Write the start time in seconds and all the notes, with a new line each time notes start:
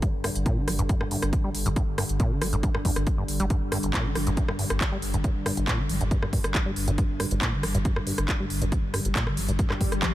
Already playing: G2 D3
0.02 G2, kick, closed hi-hat
0.14 G1
0.24 G2, cross-stick, open hi-hat
0.35 G1, closed hi-hat
0.46 A#2, kick, closed hi-hat
0.57 D3
0.68 G1 G3, cross-stick, open hi-hat
0.79 G1 G2, closed hi-hat
0.89 G2, kick, closed hi-hat
1.01 G1 G2, cross-stick
1.11 G2, open hi-hat
1.22 G1, cross-stick, closed hi-hat
1.33 kick, closed hi-hat
1.44 G1 G3
1.55 G1, open hi-hat
1.66 G1 G2, closed hi-hat
1.76 G2, kick, closed hi-hat
1.88 G1
1.98 G2, cross-stick, open hi-hat
2.09 G1, closed hi-hat
2.20 A#2, kick, closed hi-hat
2.31 D3
2.41 G1 G3, cross-stick, open hi-hat
2.53 G1 G2, closed hi-hat
2.63 G2, kick, closed hi-hat
2.75 G1 G2, cross-stick
2.85 F2, kick, open hi-hat
2.96 G1, cross-stick, closed hi-hat
3.07 kick, closed hi-hat
3.18 G1 G2
3.28 G1, open hi-hat
3.40 G1 G3, closed hi-hat
3.50 G2, kick, closed hi-hat
3.62 G1
3.72 G2, cross-stick, open hi-hat
3.83 G1, closed hi-hat
3.94 A#2, kick, clap, closed hi-hat
4.05 D3
4.15 G1 G3, cross-stick, open hi-hat
4.27 G1 G2, closed hi-hat
4.37 G2, kick, closed hi-hat
4.48 G1 G2, cross-stick
4.59 G2, open hi-hat
4.70 G1, cross-stick, closed hi-hat
4.81 kick, clap, closed hi-hat
4.92 G1 G3
5.02 G1, open hi-hat
5.14 G1 G2, closed hi-hat
5.24 G2, kick, closed hi-hat
5.35 G1
5.46 G2, cross-stick, open hi-hat
5.57 G1, closed hi-hat
5.68 A#2, kick, clap, closed hi-hat
5.79 D3
5.89 G1 G3, open hi-hat
6.01 G1 G2, closed hi-hat
6.11 G2, kick, closed hi-hat
6.22 G1 G2, cross-stick
6.33 G2, kick, open hi-hat
6.44 G1, cross-stick, closed hi-hat
6.55 kick, clap, closed hi-hat
6.66 G1 G3
6.76 G1, open hi-hat
6.88 G1 G2, closed hi-hat
6.98 G2, kick, closed hi-hat
7.09 G1
7.20 G2, cross-stick, open hi-hat
7.31 G1, closed hi-hat
7.42 A#2, kick, clap, closed hi-hat
7.53 D3
7.63 G1 G3, cross-stick, open hi-hat
7.75 G1 G2, closed hi-hat
7.85 G2, kick, closed hi-hat
7.96 G1 G2, cross-stick
8.07 G2, open hi-hat
8.18 G1, cross-stick, closed hi-hat
8.28 kick, clap, closed hi-hat
8.40 G1 G3
8.50 G1, open hi-hat
8.62 G1 G2, closed hi-hat
8.72 G2, kick, closed hi-hat
8.83 G1
8.94 G2, cross-stick, open hi-hat
9.05 G1, closed hi-hat
9.15 A#2, kick, clap, closed hi-hat
9.27 D3, cross-stick
9.37 G1 G3, open hi-hat
9.49 G1 G2, closed hi-hat
9.59 G2, kick, closed hi-hat, swell
9.70 G1 G2, cross-stick, clap
9.81 G2, kick, open hi-hat
9.92 G1, cross-stick, closed hi-hat
10.02 kick, clap, closed hi-hat, high tom